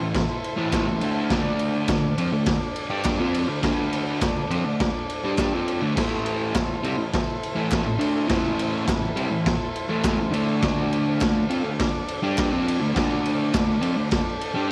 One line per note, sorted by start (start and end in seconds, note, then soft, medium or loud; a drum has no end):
0.00 0.23 A2 medium
0.00 0.23 E3 medium
0.00 0.10 C5 medium
0.14 0.69 E4 medium
0.14 0.68 A4 medium
0.14 0.68 C5 medium
0.14 kick loud
0.14 snare loud
0.14 ride loud
0.44 ride medium
0.57 0.86 A2 loud
0.57 0.86 E3 loud
0.57 0.86 A3 loud
0.72 1.27 E4 medium
0.72 1.27 A4 medium
0.72 1.27 C5 loud
0.72 kick loud
0.72 snare loud
0.72 clap medium
0.72 ride loud
0.87 1.01 A2 medium
0.87 1.02 E3 medium
1.01 1.30 D3 medium
1.01 1.30 A3 loud
1.01 1.31 D4 loud
1.01 ride medium
1.29 1.88 D3 loud
1.29 1.88 A3 loud
1.29 1.84 D4 medium
1.29 1.89 D4 loud
1.29 1.84 A4 medium
1.29 1.84 D5 medium
1.29 kick loud
1.29 snare loud
1.29 ride loud
1.59 ride medium
1.88 2.12 D3 medium
1.88 2.12 A3 medium
1.88 2.43 D4 medium
1.88 2.44 A4 medium
1.88 2.43 D5 medium
1.88 kick loud
1.88 snare loud
1.88 clap medium
1.88 ride loud
2.18 2.31 F3 medium
2.18 2.32 C4 medium
2.18 ride medium
2.32 2.56 D3 medium
2.32 2.56 A3 medium
2.46 3.02 D4 medium
2.46 3.02 A4 medium
2.46 3.01 D5 medium
2.46 kick loud
2.46 snare loud
2.46 ride loud
2.76 ride medium
2.90 3.19 G3 medium
2.90 3.19 D4 loud
2.90 3.19 G4 loud
3.04 3.60 D4 medium
3.04 3.60 A4 medium
3.04 3.59 D5 medium
3.04 kick loud
3.04 snare loud
3.04 clap medium
3.04 ride loud
3.19 3.48 F3 medium
3.19 3.48 C4 loud
3.19 3.48 F4 loud
3.35 ride medium
3.48 3.61 D3 medium
3.48 3.62 A3 loud
3.62 4.19 D3 loud
3.62 4.20 A3 loud
3.62 4.21 D4 loud
3.62 4.17 D4 medium
3.62 4.17 A4 medium
3.62 4.17 B4 loud
3.62 kick loud
3.62 snare loud
3.62 ride loud
3.93 ride medium
4.21 4.44 D3 medium
4.21 4.45 A3 medium
4.21 4.76 D4 medium
4.21 4.76 A4 medium
4.21 4.76 D5 loud
4.21 kick loud
4.21 snare loud
4.21 clap medium
4.21 ride loud
4.50 4.64 F3 medium
4.50 4.64 C4 loud
4.50 ride medium
4.65 4.89 D3 medium
4.65 4.89 A3 medium
4.80 5.35 D4 medium
4.80 5.34 A4 medium
4.80 5.34 D5 loud
4.80 kick loud
4.80 snare loud
4.80 ride loud
5.10 ride medium
5.24 5.52 G3 medium
5.24 5.52 D4 loud
5.24 5.53 G4 medium
5.37 5.93 D4 medium
5.37 5.94 A4 medium
5.37 kick loud
5.37 snare loud
5.37 clap medium
5.37 ride loud
5.41 5.94 D5 loud
5.53 5.81 F3 medium
5.53 5.82 C4 medium
5.53 5.82 F4 medium
5.68 ride medium
5.82 5.95 D3 medium
5.82 5.96 A3 loud
5.96 6.52 A2 medium
5.96 6.53 E3 loud
5.96 6.54 A3 loud
5.96 6.51 E4 medium
5.96 6.51 A4 medium
5.96 6.52 C5 loud
5.96 kick loud
5.96 snare loud
5.96 crash loud
6.26 ride medium
6.53 6.77 A2 medium
6.53 6.78 E3 medium
6.53 7.08 E4 medium
6.53 7.08 A4 medium
6.53 7.08 C5 loud
6.53 kick loud
6.53 snare loud
6.53 clap medium
6.53 ride loud
6.83 6.97 C3 medium
6.83 6.97 G3 loud
6.83 ride medium
6.98 7.21 A2 medium
6.98 7.21 E3 medium
7.12 7.67 E4 medium
7.12 7.67 A4 medium
7.12 7.67 C5 loud
7.12 kick loud
7.12 snare loud
7.12 ride loud
7.43 ride medium
7.55 7.84 A2 medium
7.55 7.84 E3 medium
7.55 7.85 A3 loud
7.71 8.27 E4 medium
7.71 8.27 A4 medium
7.71 kick loud
7.71 snare loud
7.71 clap loud
7.71 ride loud
7.76 8.28 C5 loud
7.85 7.99 A2 medium
7.85 7.99 E3 medium
7.99 8.27 D3 medium
7.99 8.28 A3 loud
7.99 8.29 D4 loud
7.99 ride medium
8.28 8.85 A2 loud
8.28 8.85 E3 loud
8.28 8.87 A3 loud
8.28 8.84 E4 medium
8.28 8.83 A4 medium
8.28 8.84 C5 loud
8.28 kick loud
8.28 snare loud
8.28 ride loud
8.59 ride medium
8.85 9.10 A2 medium
8.85 9.10 E3 medium
8.85 9.41 E4 medium
8.85 9.40 A4 medium
8.85 9.41 B4 loud
8.85 kick loud
8.85 snare loud
8.85 clap loud
8.85 ride loud
9.16 9.30 C3 medium
9.16 9.30 G3 loud
9.16 ride medium
9.31 9.54 A2 medium
9.31 9.55 E3 medium
9.41 9.98 E4 medium
9.41 9.97 A4 medium
9.41 9.97 C5 loud
9.46 kick loud
9.46 snare loud
9.46 ride loud
9.76 ride medium
9.89 10.16 A2 medium
9.89 10.17 E3 medium
9.89 10.18 A3 loud
9.99 10.56 E4 medium
9.99 10.56 A4 medium
9.99 10.55 C5 loud
10.04 kick loud
10.04 snare loud
10.04 clap loud
10.04 ride loud
10.17 10.31 A2 medium
10.17 10.33 E3 medium
10.31 10.60 D3 medium
10.31 10.61 A3 loud
10.31 10.62 D4 loud
10.31 ride medium
10.56 11.13 D4 medium
10.56 11.14 A4 medium
10.56 11.14 D5 medium
10.62 11.20 D3 loud
10.62 11.20 A3 loud
10.62 11.20 D4 loud
10.62 kick loud
10.62 snare loud
10.62 ride loud
10.93 ride medium
11.17 11.44 D3 medium
11.17 11.44 A3 medium
11.17 11.74 D4 medium
11.17 11.74 A4 medium
11.17 11.73 F5 loud
11.21 kick loud
11.21 snare loud
11.21 clap medium
11.21 ride loud
11.49 11.63 F3 medium
11.49 11.64 C4 loud
11.49 ride medium
11.64 11.88 D3 medium
11.64 11.88 A3 medium
11.78 12.33 D4 medium
11.78 12.33 A4 medium
11.78 12.33 D5 loud
11.78 kick loud
11.78 snare loud
11.78 ride loud
12.08 ride medium
12.22 12.51 G3 loud
12.22 12.51 D4 loud
12.22 12.52 G4 loud
12.36 12.92 D4 medium
12.36 12.91 A4 medium
12.36 12.91 D5 loud
12.36 kick loud
12.36 snare loud
12.36 clap medium
12.36 ride loud
12.51 12.80 F3 loud
12.51 12.80 C4 loud
12.51 12.81 F4 loud
12.68 ride medium
12.80 12.93 D3 loud
12.80 12.94 A3 loud
12.94 13.52 D3 loud
12.94 13.52 A3 loud
12.94 13.49 D4 medium
12.94 13.53 D4 loud
12.94 13.50 A4 medium
12.94 13.50 D5 medium
12.94 kick loud
12.94 snare loud
12.94 ride loud
13.25 ride medium
13.53 13.77 D3 medium
13.53 13.77 A3 medium
13.53 14.10 D4 medium
13.53 14.09 A4 medium
13.53 14.09 D5 loud
13.53 kick loud
13.53 snare loud
13.53 clap loud
13.53 ride loud
13.81 13.96 F3 medium
13.81 13.96 C4 loud
13.81 ride medium
13.97 14.21 D3 medium
13.97 14.21 A3 medium
14.11 14.67 D4 medium
14.11 14.68 A4 medium
14.11 14.67 D5 loud
14.11 kick loud
14.11 snare loud
14.11 ride loud
14.40 14.68 A5 medium
14.40 ride medium
14.54 14.72 G3 medium
14.54 14.72 D4 loud
14.54 14.72 G4 loud